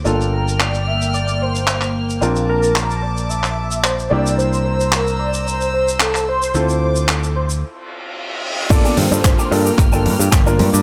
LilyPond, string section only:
\new Staff \with { instrumentName = "String section" } { \time 4/4 \key g \dorian \tempo 4 = 111 << { <g'' f'''>1 | <a'' d'''>2.~ <a'' d'''>8 <bes'' e'''>8~ | <bes'' e'''>1 | d'''2 r2 |
<g'' f'''>1 | } \\ { bes1~ | bes2.~ bes8 c''8~ | c''1~ | c''2 r2 |
bes1 | } >> }